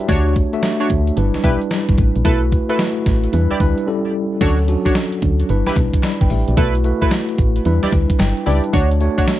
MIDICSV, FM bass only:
0, 0, Header, 1, 2, 480
1, 0, Start_track
1, 0, Tempo, 540541
1, 77, Time_signature, 4, 2, 24, 8
1, 8345, End_track
2, 0, Start_track
2, 0, Title_t, "FM bass"
2, 0, Program_c, 0, 39
2, 80, Note_on_c, 0, 38, 103
2, 393, Note_off_c, 0, 38, 0
2, 802, Note_on_c, 0, 38, 79
2, 990, Note_off_c, 0, 38, 0
2, 1043, Note_on_c, 0, 31, 112
2, 1165, Note_off_c, 0, 31, 0
2, 1199, Note_on_c, 0, 35, 45
2, 1231, Note_off_c, 0, 35, 0
2, 1280, Note_on_c, 0, 35, 95
2, 1403, Note_off_c, 0, 35, 0
2, 1678, Note_on_c, 0, 31, 93
2, 1743, Note_off_c, 0, 31, 0
2, 1762, Note_on_c, 0, 33, 94
2, 1884, Note_off_c, 0, 33, 0
2, 1919, Note_on_c, 0, 34, 92
2, 1983, Note_off_c, 0, 34, 0
2, 2000, Note_on_c, 0, 35, 100
2, 2313, Note_off_c, 0, 35, 0
2, 2722, Note_on_c, 0, 33, 83
2, 2911, Note_off_c, 0, 33, 0
2, 2964, Note_on_c, 0, 40, 111
2, 3085, Note_off_c, 0, 40, 0
2, 3119, Note_on_c, 0, 38, 49
2, 3151, Note_off_c, 0, 38, 0
2, 3202, Note_on_c, 0, 38, 73
2, 3324, Note_off_c, 0, 38, 0
2, 3919, Note_on_c, 0, 38, 102
2, 4233, Note_off_c, 0, 38, 0
2, 4641, Note_on_c, 0, 38, 84
2, 4830, Note_off_c, 0, 38, 0
2, 4883, Note_on_c, 0, 31, 100
2, 5004, Note_off_c, 0, 31, 0
2, 5040, Note_on_c, 0, 35, 45
2, 5072, Note_off_c, 0, 35, 0
2, 5120, Note_on_c, 0, 35, 85
2, 5243, Note_off_c, 0, 35, 0
2, 5517, Note_on_c, 0, 31, 96
2, 5582, Note_off_c, 0, 31, 0
2, 5602, Note_on_c, 0, 33, 92
2, 5724, Note_off_c, 0, 33, 0
2, 5758, Note_on_c, 0, 34, 93
2, 5823, Note_off_c, 0, 34, 0
2, 5840, Note_on_c, 0, 35, 110
2, 6153, Note_off_c, 0, 35, 0
2, 6560, Note_on_c, 0, 33, 85
2, 6750, Note_off_c, 0, 33, 0
2, 6801, Note_on_c, 0, 40, 101
2, 6923, Note_off_c, 0, 40, 0
2, 6958, Note_on_c, 0, 38, 49
2, 6991, Note_off_c, 0, 38, 0
2, 7040, Note_on_c, 0, 38, 82
2, 7163, Note_off_c, 0, 38, 0
2, 7282, Note_on_c, 0, 31, 96
2, 7404, Note_off_c, 0, 31, 0
2, 7523, Note_on_c, 0, 37, 89
2, 7645, Note_off_c, 0, 37, 0
2, 7759, Note_on_c, 0, 38, 107
2, 8073, Note_off_c, 0, 38, 0
2, 8345, End_track
0, 0, End_of_file